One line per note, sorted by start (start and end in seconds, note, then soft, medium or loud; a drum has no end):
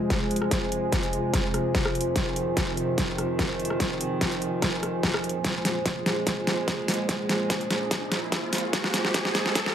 0.00 9.75 F2 medium
0.00 5.40 C3 medium
0.00 2.15 G#3 medium
0.00 9.75 F4 medium
0.00 9.75 G#4 medium
0.00 9.75 C5 medium
0.00 9.75 G#5 medium
0.10 kick medium
0.10 snare soft
0.10 closed hi-hat medium
0.31 closed hi-hat soft
0.36 closed hi-hat medium
0.42 cross-stick medium
0.51 kick medium
0.51 snare soft
0.51 closed hi-hat medium
0.72 closed hi-hat medium
0.92 kick medium
0.92 snare medium
0.92 closed hi-hat medium
1.03 closed hi-hat soft
1.13 closed hi-hat medium
1.34 kick medium
1.34 cross-stick soft
1.34 snare medium
1.34 closed hi-hat medium
1.54 cross-stick soft
1.54 closed hi-hat medium
1.75 kick loud
1.75 snare medium
1.75 closed hi-hat medium
1.86 cross-stick medium
1.95 closed hi-hat soft
2.01 closed hi-hat medium
2.16 5.43 D#3 medium
2.16 kick medium
2.16 snare medium
2.16 closed hi-hat medium
2.36 closed hi-hat medium
2.57 kick medium
2.57 snare medium
2.57 closed hi-hat medium
2.77 closed hi-hat medium
2.98 kick medium
2.98 snare medium
2.98 closed hi-hat medium
3.18 cross-stick medium
3.18 closed hi-hat medium
3.39 kick medium
3.39 snare medium
3.39 closed hi-hat medium
3.60 closed hi-hat soft
3.65 closed hi-hat medium
3.70 cross-stick medium
3.80 kick medium
3.80 snare medium
3.80 closed hi-hat medium
4.01 closed hi-hat medium
4.21 kick medium
4.21 snare medium
4.21 closed hi-hat medium
4.32 closed hi-hat soft
4.42 closed hi-hat soft
4.62 kick medium
4.62 cross-stick medium
4.62 snare medium
4.62 closed hi-hat medium
4.83 cross-stick medium
4.83 closed hi-hat soft
5.03 kick medium
5.03 snare medium
5.03 closed hi-hat soft
5.14 cross-stick medium
5.24 closed hi-hat soft
5.29 closed hi-hat medium
5.44 9.75 A#2 medium
5.44 8.72 G#3 medium
5.44 kick medium
5.44 snare medium
5.44 closed hi-hat medium
5.44 riser medium
5.65 snare medium
5.65 closed hi-hat medium
5.86 kick medium
5.86 snare medium
5.86 closed hi-hat medium
6.06 snare medium
6.06 closed hi-hat soft
6.27 kick medium
6.27 snare medium
6.27 closed hi-hat medium
6.47 snare medium
6.47 closed hi-hat medium
6.68 kick medium
6.68 snare medium
6.68 closed hi-hat medium
6.88 snare medium
6.88 open hi-hat medium
6.94 closed hi-hat medium
7.09 kick loud
7.09 snare medium
7.09 closed hi-hat medium
7.29 snare medium
7.29 closed hi-hat medium
7.50 kick medium
7.50 snare medium
7.50 closed hi-hat medium
7.61 closed hi-hat soft
7.71 snare medium
7.71 closed hi-hat medium
7.91 kick loud
7.91 snare medium
7.91 closed hi-hat medium
8.12 snare medium
8.12 closed hi-hat medium
8.32 kick loud
8.32 snare medium
8.32 closed hi-hat medium
8.53 snare medium
8.53 open hi-hat loud
8.58 closed hi-hat medium
8.73 9.75 G#3 medium
8.73 kick medium
8.73 snare medium
8.73 closed hi-hat medium
8.84 snare medium
8.94 snare medium
8.94 closed hi-hat medium
9.05 snare medium
9.14 kick medium
9.14 snare loud
9.14 closed hi-hat medium
9.25 snare medium
9.35 snare loud
9.35 closed hi-hat medium
9.46 snare medium
9.55 kick loud
9.55 snare medium
9.55 closed hi-hat medium
9.66 snare medium